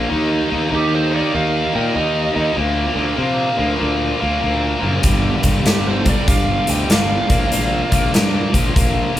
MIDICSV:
0, 0, Header, 1, 6, 480
1, 0, Start_track
1, 0, Tempo, 618557
1, 71, Time_signature, 4, 2, 24, 8
1, 7138, End_track
2, 0, Start_track
2, 0, Title_t, "Electric slide guitar"
2, 0, Program_c, 0, 29
2, 585, Note_on_c, 0, 67, 85
2, 723, Note_off_c, 0, 67, 0
2, 735, Note_on_c, 0, 72, 73
2, 878, Note_off_c, 0, 72, 0
2, 901, Note_on_c, 0, 74, 71
2, 1041, Note_off_c, 0, 74, 0
2, 1047, Note_on_c, 0, 77, 89
2, 1349, Note_off_c, 0, 77, 0
2, 1363, Note_on_c, 0, 79, 76
2, 1512, Note_off_c, 0, 79, 0
2, 1520, Note_on_c, 0, 75, 74
2, 1981, Note_off_c, 0, 75, 0
2, 4405, Note_on_c, 0, 67, 81
2, 4553, Note_off_c, 0, 67, 0
2, 4555, Note_on_c, 0, 72, 67
2, 4708, Note_off_c, 0, 72, 0
2, 4728, Note_on_c, 0, 74, 70
2, 4873, Note_on_c, 0, 77, 82
2, 4875, Note_off_c, 0, 74, 0
2, 5183, Note_off_c, 0, 77, 0
2, 5197, Note_on_c, 0, 79, 81
2, 5350, Note_off_c, 0, 79, 0
2, 5371, Note_on_c, 0, 77, 78
2, 6294, Note_off_c, 0, 77, 0
2, 7138, End_track
3, 0, Start_track
3, 0, Title_t, "Lead electric guitar"
3, 0, Program_c, 1, 29
3, 567, Note_on_c, 1, 63, 77
3, 708, Note_off_c, 1, 63, 0
3, 731, Note_on_c, 1, 69, 67
3, 870, Note_off_c, 1, 69, 0
3, 882, Note_on_c, 1, 70, 66
3, 1026, Note_off_c, 1, 70, 0
3, 1044, Note_on_c, 1, 70, 70
3, 1335, Note_off_c, 1, 70, 0
3, 1359, Note_on_c, 1, 75, 66
3, 1504, Note_off_c, 1, 75, 0
3, 1519, Note_on_c, 1, 70, 67
3, 2443, Note_off_c, 1, 70, 0
3, 4403, Note_on_c, 1, 62, 71
3, 4547, Note_off_c, 1, 62, 0
3, 4557, Note_on_c, 1, 69, 64
3, 4703, Note_off_c, 1, 69, 0
3, 4717, Note_on_c, 1, 70, 62
3, 4863, Note_off_c, 1, 70, 0
3, 4878, Note_on_c, 1, 74, 67
3, 5173, Note_off_c, 1, 74, 0
3, 5203, Note_on_c, 1, 75, 67
3, 5347, Note_off_c, 1, 75, 0
3, 5356, Note_on_c, 1, 74, 72
3, 6284, Note_off_c, 1, 74, 0
3, 7138, End_track
4, 0, Start_track
4, 0, Title_t, "Overdriven electric guitar"
4, 0, Program_c, 2, 29
4, 68, Note_on_c, 2, 51, 81
4, 74, Note_on_c, 2, 58, 83
4, 78, Note_on_c, 2, 63, 94
4, 376, Note_off_c, 2, 51, 0
4, 382, Note_off_c, 2, 63, 0
4, 385, Note_off_c, 2, 58, 0
4, 385, Note_on_c, 2, 51, 81
4, 388, Note_on_c, 2, 58, 79
4, 391, Note_on_c, 2, 63, 90
4, 535, Note_off_c, 2, 51, 0
4, 545, Note_on_c, 2, 51, 77
4, 548, Note_off_c, 2, 63, 0
4, 551, Note_off_c, 2, 58, 0
4, 554, Note_on_c, 2, 58, 78
4, 558, Note_on_c, 2, 63, 82
4, 849, Note_off_c, 2, 51, 0
4, 859, Note_on_c, 2, 51, 72
4, 860, Note_off_c, 2, 63, 0
4, 864, Note_off_c, 2, 58, 0
4, 867, Note_on_c, 2, 58, 68
4, 869, Note_on_c, 2, 63, 76
4, 1029, Note_off_c, 2, 51, 0
4, 1036, Note_off_c, 2, 63, 0
4, 1038, Note_off_c, 2, 58, 0
4, 1038, Note_on_c, 2, 51, 80
4, 1041, Note_on_c, 2, 58, 92
4, 1045, Note_on_c, 2, 63, 91
4, 1335, Note_off_c, 2, 51, 0
4, 1344, Note_on_c, 2, 51, 71
4, 1345, Note_off_c, 2, 58, 0
4, 1345, Note_off_c, 2, 63, 0
4, 1349, Note_on_c, 2, 58, 69
4, 1354, Note_on_c, 2, 63, 79
4, 1502, Note_off_c, 2, 51, 0
4, 1511, Note_off_c, 2, 63, 0
4, 1511, Note_on_c, 2, 51, 77
4, 1514, Note_off_c, 2, 58, 0
4, 1517, Note_on_c, 2, 58, 77
4, 1520, Note_on_c, 2, 63, 85
4, 1810, Note_off_c, 2, 51, 0
4, 1820, Note_on_c, 2, 51, 69
4, 1821, Note_off_c, 2, 63, 0
4, 1825, Note_off_c, 2, 58, 0
4, 1828, Note_on_c, 2, 58, 79
4, 1831, Note_on_c, 2, 63, 81
4, 1979, Note_off_c, 2, 51, 0
4, 1984, Note_off_c, 2, 58, 0
4, 1984, Note_off_c, 2, 63, 0
4, 1987, Note_on_c, 2, 46, 82
4, 1987, Note_on_c, 2, 53, 84
4, 1997, Note_on_c, 2, 58, 94
4, 2284, Note_off_c, 2, 46, 0
4, 2293, Note_on_c, 2, 46, 77
4, 2295, Note_off_c, 2, 53, 0
4, 2304, Note_off_c, 2, 58, 0
4, 2304, Note_on_c, 2, 53, 81
4, 2307, Note_on_c, 2, 58, 88
4, 2448, Note_off_c, 2, 46, 0
4, 2451, Note_off_c, 2, 53, 0
4, 2457, Note_on_c, 2, 46, 70
4, 2460, Note_on_c, 2, 53, 77
4, 2466, Note_off_c, 2, 58, 0
4, 2469, Note_on_c, 2, 58, 82
4, 2763, Note_off_c, 2, 46, 0
4, 2771, Note_off_c, 2, 53, 0
4, 2773, Note_on_c, 2, 46, 77
4, 2779, Note_off_c, 2, 58, 0
4, 2780, Note_on_c, 2, 53, 66
4, 2783, Note_on_c, 2, 58, 73
4, 2927, Note_off_c, 2, 46, 0
4, 2932, Note_off_c, 2, 53, 0
4, 2936, Note_on_c, 2, 46, 82
4, 2941, Note_on_c, 2, 53, 85
4, 2942, Note_off_c, 2, 58, 0
4, 2945, Note_on_c, 2, 58, 99
4, 3246, Note_off_c, 2, 46, 0
4, 3252, Note_off_c, 2, 53, 0
4, 3255, Note_on_c, 2, 46, 63
4, 3261, Note_on_c, 2, 53, 72
4, 3263, Note_off_c, 2, 58, 0
4, 3266, Note_on_c, 2, 58, 77
4, 3407, Note_off_c, 2, 46, 0
4, 3411, Note_off_c, 2, 53, 0
4, 3416, Note_on_c, 2, 46, 79
4, 3421, Note_off_c, 2, 58, 0
4, 3421, Note_on_c, 2, 53, 74
4, 3424, Note_on_c, 2, 58, 82
4, 3717, Note_off_c, 2, 46, 0
4, 3724, Note_off_c, 2, 53, 0
4, 3726, Note_on_c, 2, 46, 71
4, 3733, Note_off_c, 2, 58, 0
4, 3733, Note_on_c, 2, 53, 76
4, 3736, Note_on_c, 2, 58, 73
4, 3892, Note_off_c, 2, 46, 0
4, 3896, Note_off_c, 2, 53, 0
4, 3896, Note_on_c, 2, 43, 73
4, 3899, Note_on_c, 2, 50, 80
4, 3905, Note_on_c, 2, 55, 92
4, 4201, Note_off_c, 2, 43, 0
4, 4205, Note_off_c, 2, 50, 0
4, 4208, Note_off_c, 2, 55, 0
4, 4210, Note_on_c, 2, 43, 76
4, 4214, Note_on_c, 2, 50, 74
4, 4217, Note_on_c, 2, 55, 81
4, 4384, Note_off_c, 2, 43, 0
4, 4387, Note_off_c, 2, 50, 0
4, 4390, Note_off_c, 2, 55, 0
4, 4393, Note_on_c, 2, 43, 72
4, 4396, Note_on_c, 2, 50, 73
4, 4400, Note_on_c, 2, 55, 77
4, 4687, Note_off_c, 2, 43, 0
4, 4694, Note_off_c, 2, 50, 0
4, 4696, Note_on_c, 2, 43, 74
4, 4700, Note_off_c, 2, 55, 0
4, 4703, Note_on_c, 2, 50, 78
4, 4709, Note_on_c, 2, 55, 69
4, 4859, Note_off_c, 2, 43, 0
4, 4864, Note_off_c, 2, 50, 0
4, 4868, Note_on_c, 2, 43, 84
4, 4871, Note_off_c, 2, 55, 0
4, 4873, Note_on_c, 2, 50, 89
4, 4880, Note_on_c, 2, 55, 84
4, 5174, Note_off_c, 2, 43, 0
4, 5180, Note_off_c, 2, 50, 0
4, 5183, Note_on_c, 2, 43, 74
4, 5185, Note_off_c, 2, 55, 0
4, 5189, Note_on_c, 2, 50, 70
4, 5195, Note_on_c, 2, 55, 76
4, 5342, Note_off_c, 2, 43, 0
4, 5348, Note_off_c, 2, 50, 0
4, 5352, Note_on_c, 2, 43, 75
4, 5354, Note_off_c, 2, 55, 0
4, 5357, Note_on_c, 2, 50, 82
4, 5363, Note_on_c, 2, 55, 85
4, 5645, Note_off_c, 2, 43, 0
4, 5648, Note_off_c, 2, 50, 0
4, 5651, Note_off_c, 2, 55, 0
4, 5661, Note_on_c, 2, 46, 84
4, 5663, Note_on_c, 2, 53, 79
4, 5665, Note_off_c, 2, 58, 0
4, 5668, Note_on_c, 2, 58, 89
4, 5830, Note_off_c, 2, 53, 0
4, 5831, Note_off_c, 2, 46, 0
4, 5840, Note_on_c, 2, 53, 89
4, 5841, Note_on_c, 2, 46, 75
4, 5843, Note_off_c, 2, 58, 0
4, 5846, Note_on_c, 2, 58, 88
4, 6134, Note_off_c, 2, 46, 0
4, 6136, Note_off_c, 2, 53, 0
4, 6143, Note_on_c, 2, 46, 82
4, 6145, Note_on_c, 2, 53, 80
4, 6148, Note_off_c, 2, 58, 0
4, 6151, Note_on_c, 2, 58, 89
4, 6303, Note_off_c, 2, 46, 0
4, 6306, Note_off_c, 2, 53, 0
4, 6312, Note_on_c, 2, 46, 82
4, 6316, Note_on_c, 2, 53, 74
4, 6317, Note_off_c, 2, 58, 0
4, 6320, Note_on_c, 2, 58, 83
4, 6615, Note_off_c, 2, 46, 0
4, 6618, Note_off_c, 2, 53, 0
4, 6624, Note_on_c, 2, 46, 64
4, 6627, Note_on_c, 2, 53, 81
4, 6628, Note_off_c, 2, 58, 0
4, 6631, Note_on_c, 2, 58, 76
4, 6769, Note_off_c, 2, 46, 0
4, 6778, Note_off_c, 2, 53, 0
4, 6779, Note_on_c, 2, 46, 90
4, 6788, Note_on_c, 2, 53, 82
4, 6790, Note_off_c, 2, 58, 0
4, 6794, Note_on_c, 2, 58, 94
4, 7090, Note_off_c, 2, 46, 0
4, 7095, Note_off_c, 2, 53, 0
4, 7099, Note_on_c, 2, 46, 69
4, 7104, Note_on_c, 2, 53, 76
4, 7106, Note_off_c, 2, 58, 0
4, 7109, Note_on_c, 2, 58, 80
4, 7138, Note_off_c, 2, 46, 0
4, 7138, Note_off_c, 2, 53, 0
4, 7138, Note_off_c, 2, 58, 0
4, 7138, End_track
5, 0, Start_track
5, 0, Title_t, "Fingered electric bass"
5, 0, Program_c, 3, 33
5, 88, Note_on_c, 3, 39, 85
5, 307, Note_off_c, 3, 39, 0
5, 404, Note_on_c, 3, 39, 81
5, 517, Note_off_c, 3, 39, 0
5, 563, Note_on_c, 3, 39, 82
5, 905, Note_off_c, 3, 39, 0
5, 1044, Note_on_c, 3, 39, 78
5, 1264, Note_off_c, 3, 39, 0
5, 1358, Note_on_c, 3, 46, 71
5, 1474, Note_off_c, 3, 46, 0
5, 1518, Note_on_c, 3, 39, 74
5, 1740, Note_off_c, 3, 39, 0
5, 1831, Note_on_c, 3, 39, 73
5, 1949, Note_off_c, 3, 39, 0
5, 1993, Note_on_c, 3, 38, 85
5, 2217, Note_off_c, 3, 38, 0
5, 2294, Note_on_c, 3, 38, 75
5, 2418, Note_off_c, 3, 38, 0
5, 2469, Note_on_c, 3, 48, 80
5, 2694, Note_off_c, 3, 48, 0
5, 2786, Note_on_c, 3, 38, 79
5, 2906, Note_off_c, 3, 38, 0
5, 2961, Note_on_c, 3, 38, 78
5, 3182, Note_off_c, 3, 38, 0
5, 3277, Note_on_c, 3, 38, 73
5, 3393, Note_off_c, 3, 38, 0
5, 3444, Note_on_c, 3, 38, 74
5, 3664, Note_off_c, 3, 38, 0
5, 3746, Note_on_c, 3, 30, 82
5, 3866, Note_off_c, 3, 30, 0
5, 3916, Note_on_c, 3, 31, 88
5, 4139, Note_off_c, 3, 31, 0
5, 4224, Note_on_c, 3, 31, 81
5, 4345, Note_off_c, 3, 31, 0
5, 4390, Note_on_c, 3, 31, 78
5, 4737, Note_off_c, 3, 31, 0
5, 4874, Note_on_c, 3, 31, 77
5, 5098, Note_off_c, 3, 31, 0
5, 5185, Note_on_c, 3, 38, 79
5, 5306, Note_off_c, 3, 38, 0
5, 5355, Note_on_c, 3, 31, 83
5, 5579, Note_off_c, 3, 31, 0
5, 5664, Note_on_c, 3, 34, 80
5, 5786, Note_off_c, 3, 34, 0
5, 5824, Note_on_c, 3, 34, 87
5, 6052, Note_off_c, 3, 34, 0
5, 6147, Note_on_c, 3, 34, 77
5, 6268, Note_off_c, 3, 34, 0
5, 6316, Note_on_c, 3, 43, 86
5, 6540, Note_off_c, 3, 43, 0
5, 6627, Note_on_c, 3, 34, 77
5, 6748, Note_off_c, 3, 34, 0
5, 6803, Note_on_c, 3, 34, 80
5, 7025, Note_off_c, 3, 34, 0
5, 7111, Note_on_c, 3, 34, 73
5, 7138, Note_off_c, 3, 34, 0
5, 7138, End_track
6, 0, Start_track
6, 0, Title_t, "Drums"
6, 3905, Note_on_c, 9, 42, 72
6, 3910, Note_on_c, 9, 36, 94
6, 3983, Note_off_c, 9, 42, 0
6, 3988, Note_off_c, 9, 36, 0
6, 4216, Note_on_c, 9, 42, 56
6, 4221, Note_on_c, 9, 36, 73
6, 4293, Note_off_c, 9, 42, 0
6, 4298, Note_off_c, 9, 36, 0
6, 4389, Note_on_c, 9, 42, 70
6, 4396, Note_on_c, 9, 38, 92
6, 4467, Note_off_c, 9, 42, 0
6, 4474, Note_off_c, 9, 38, 0
6, 4700, Note_on_c, 9, 42, 57
6, 4702, Note_on_c, 9, 36, 82
6, 4777, Note_off_c, 9, 42, 0
6, 4780, Note_off_c, 9, 36, 0
6, 4872, Note_on_c, 9, 36, 103
6, 4872, Note_on_c, 9, 42, 77
6, 4949, Note_off_c, 9, 36, 0
6, 4949, Note_off_c, 9, 42, 0
6, 5177, Note_on_c, 9, 42, 57
6, 5255, Note_off_c, 9, 42, 0
6, 5353, Note_on_c, 9, 42, 77
6, 5360, Note_on_c, 9, 38, 104
6, 5431, Note_off_c, 9, 42, 0
6, 5438, Note_off_c, 9, 38, 0
6, 5663, Note_on_c, 9, 42, 61
6, 5664, Note_on_c, 9, 36, 90
6, 5740, Note_off_c, 9, 42, 0
6, 5742, Note_off_c, 9, 36, 0
6, 5834, Note_on_c, 9, 42, 77
6, 5911, Note_off_c, 9, 42, 0
6, 6145, Note_on_c, 9, 42, 57
6, 6147, Note_on_c, 9, 36, 72
6, 6223, Note_off_c, 9, 42, 0
6, 6224, Note_off_c, 9, 36, 0
6, 6318, Note_on_c, 9, 42, 78
6, 6325, Note_on_c, 9, 38, 99
6, 6395, Note_off_c, 9, 42, 0
6, 6402, Note_off_c, 9, 38, 0
6, 6628, Note_on_c, 9, 36, 82
6, 6633, Note_on_c, 9, 42, 61
6, 6705, Note_off_c, 9, 36, 0
6, 6710, Note_off_c, 9, 42, 0
6, 6799, Note_on_c, 9, 36, 100
6, 6806, Note_on_c, 9, 42, 77
6, 6877, Note_off_c, 9, 36, 0
6, 6884, Note_off_c, 9, 42, 0
6, 7138, End_track
0, 0, End_of_file